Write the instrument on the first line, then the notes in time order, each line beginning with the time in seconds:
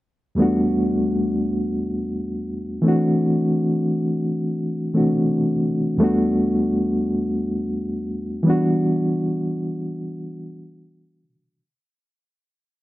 reed electric piano
0.35 E2 G3 A3 B3
0.40 D4 F#4
2.82 E3 A3 C4
2.87 D4 F#4
4.94 E3 A3 C4 D4 F#4
5.98 E2 G3 A3 B3
6.03 D4 F#4
8.43 E3 G3 B3
8.48 D4 F#4